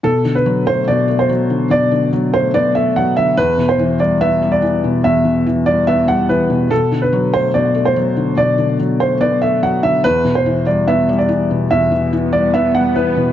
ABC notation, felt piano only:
X:1
M:4/4
L:1/8
Q:1/4=144
K:Bphr
V:1 name="Felt piano" clef=bass
B,, D, F, A, B,, A, F, D, | B,, D, F, A, B, A, F, D, | E,, B,, E, G, B, G, E, B,, | E,, B,, E, G, B, G, E, B,, |
B,, D, F, A, B,, A, F, D, | B,, D, F, A, B, A, F, D, | E,, B,, E, G, B, G, E, B,, | E,, B,, E, G, B, G, E, B,, |]